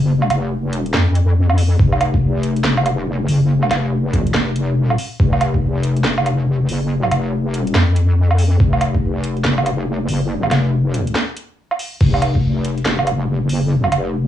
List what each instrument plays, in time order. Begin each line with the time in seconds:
Already playing: wobble bass F#1
0.22 low woodblock
0.30 wobble bass F1, closed hi-hat, low woodblock
0.73 wobble bass E1, closed hi-hat
0.86 closed hi-hat
0.94 wobble bass F2, snare, clap
1.15 closed hi-hat
1.50 low woodblock
1.58 open hi-hat
1.79 wobble bass F1, kick
1.92 low woodblock
2.01 closed hi-hat, low woodblock
2.14 kick
2.43 closed hi-hat
2.56 closed hi-hat
2.64 wobble bass F1, snare, clap
2.77 low woodblock
2.86 closed hi-hat, low woodblock
3.28 wobble bass F#1, open hi-hat
3.63 low woodblock
3.71 wobble bass F1, snare, closed hi-hat, low woodblock
4.13 kick, closed hi-hat
4.27 closed hi-hat
4.34 wobble bass F1, snare, clap
4.56 closed hi-hat
4.79 wobble bass E1
4.90 low woodblock
4.98 open hi-hat
5.20 wobble bass F1, kick
5.33 low woodblock
5.41 closed hi-hat, low woodblock
5.54 kick
5.83 closed hi-hat
5.97 closed hi-hat
6.04 wobble bass F1, snare, clap
6.18 low woodblock
6.26 closed hi-hat, low woodblock
6.69 wobble bass F#1, open hi-hat
7.03 low woodblock
7.11 wobble bass F1, closed hi-hat, low woodblock
7.54 wobble bass E1, closed hi-hat
7.67 closed hi-hat
7.75 wobble bass F2, snare, clap
7.96 closed hi-hat
8.31 low woodblock
8.38 open hi-hat
8.60 wobble bass F1, kick
8.73 low woodblock
8.81 closed hi-hat, low woodblock
8.95 kick
9.24 closed hi-hat
9.37 closed hi-hat
9.45 wobble bass F1, snare, clap
9.58 low woodblock
9.66 closed hi-hat, low woodblock
10.09 wobble bass F#1, open hi-hat
10.43 low woodblock
10.51 wobble bass F1, snare, closed hi-hat, low woodblock
10.94 closed hi-hat
11.07 closed hi-hat
11.15 snare, clap
11.37 closed hi-hat
11.71 low woodblock
11.79 open hi-hat
12.00 wobble bass F1, kick, crash
12.14 low woodblock
12.22 closed hi-hat, low woodblock
12.35 kick
12.65 closed hi-hat
12.78 closed hi-hat
12.86 wobble bass F1, snare, clap
12.99 low woodblock
13.07 closed hi-hat, low woodblock
13.49 wobble bass F#1, open hi-hat
13.84 low woodblock
13.92 wobble bass F1, closed hi-hat, low woodblock